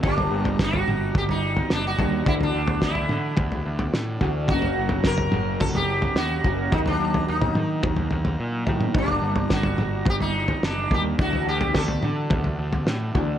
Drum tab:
SD |----o-------o---|----o-------o---|----o-------o---|----------------|
T2 |------o---------|------o---------|------o---------|-----oo--------o|
FT |oo-o-o--oo-o--o-|oo-o-o--oo-o--o-|oo-o-o--oo-o--o-|oo-o-o--oooo--o-|
BD |o---o---o-----o-|o---o---o-----o-|o---o---o-----o-|o-------o-------|

SD |----o-------o---|----o-------o---|
T2 |------o---------|------o---------|
FT |oo-o-o--oo-o--o-|oo-o-o--oo-o--o-|
BD |o---o---o-----o-|o---o---o-----o-|